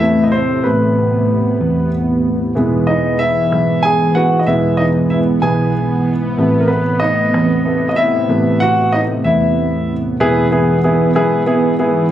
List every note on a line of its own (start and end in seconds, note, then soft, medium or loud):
0.00 0.61 E2 medium
0.00 2.53 A2 medium
0.00 2.53 C3 medium
0.00 0.29 C3 soft
0.00 0.63 A3 medium
0.00 0.29 A3 soft
0.00 0.30 B3 soft
0.00 0.24 E4 medium
0.00 0.26 E5 medium
0.24 0.32 D#5 medium
0.32 0.63 C4 medium
0.32 0.65 C5 medium
0.64 1.56 A1 medium
0.64 2.52 C3 soft
0.64 2.52 A3 soft
0.64 2.54 B3 medium
0.64 1.89 B3 medium
0.64 1.88 B4 medium
1.61 2.52 E2 medium
2.55 3.52 E1 medium
2.55 6.35 G#2 medium
2.55 4.14 E3 soft
2.55 6.35 E3 medium
2.55 4.15 G#3 soft
2.55 10.16 B3 medium
2.55 4.15 B3 medium
2.87 3.18 D#4 medium
2.87 3.17 D#5 medium
3.19 3.80 E4 medium
3.19 3.85 E5 medium
3.52 4.43 B1 medium
3.83 4.14 G#4 medium
3.83 4.16 G#5 medium
4.15 4.44 E3 soft
4.15 4.44 G#3 soft
4.15 4.45 B3 soft
4.15 4.39 F#4 medium
4.15 4.38 F#5 medium
4.39 4.47 D#5 medium
4.47 5.39 E1 medium
4.47 5.39 E3 soft
4.47 5.39 G#3 soft
4.47 5.39 B3 medium
4.47 4.78 E4 medium
4.47 4.80 E5 medium
4.77 4.87 D#4 medium
4.77 4.85 D#5 medium
5.10 5.19 E4 medium
5.10 5.17 E5 medium
5.42 6.34 B1 medium
5.42 5.71 E3 soft
5.42 5.71 G#3 soft
5.42 5.71 B3 soft
5.42 6.11 G#4 medium
5.42 6.10 G#5 medium
6.37 7.34 A1 loud
6.37 10.16 A2 medium
6.37 10.16 C3 medium
6.37 6.80 C3 medium
6.37 6.81 A3 soft
6.37 6.69 B3 medium
6.60 6.69 A#4 medium
6.68 7.00 B3 medium
6.68 7.02 B4 medium
7.00 7.87 D#4 medium
7.00 7.88 D#5 medium
7.34 8.25 E2 medium
7.65 7.94 C3 soft
7.65 7.94 A3 soft
7.65 7.94 B3 medium
7.89 7.97 D#5 medium
7.96 8.58 E4 medium
7.96 8.57 E5 loud
8.29 9.21 A1 medium
8.29 10.16 C3 medium
8.29 10.16 A3 soft
8.29 10.16 B3 medium
8.60 8.91 F#4 medium
8.60 8.90 F#5 loud
8.92 9.01 D#4 medium
8.92 9.00 D#5 medium
9.24 10.16 E2 medium
9.24 9.93 E4 medium
9.24 9.92 E5 medium
10.20 11.15 E1 medium
10.20 12.11 G#2 medium
10.20 12.11 E3 medium
10.20 10.46 B3 medium
10.20 12.11 B3 medium
10.20 10.46 E4 medium
10.20 10.47 G#4 loud
10.51 10.78 B3 medium
10.51 10.78 E4 medium
10.51 10.78 G#4 medium
10.84 11.10 B3 medium
10.84 11.10 E4 medium
10.84 11.10 G#4 medium
11.15 12.07 B1 medium
11.15 11.41 B3 medium
11.15 11.42 E4 medium
11.15 11.42 G#4 medium
11.46 11.73 B3 medium
11.46 11.73 E4 medium
11.46 11.73 G#4 medium
11.79 12.05 B3 medium
11.79 12.05 E4 medium
11.79 12.05 G#4 medium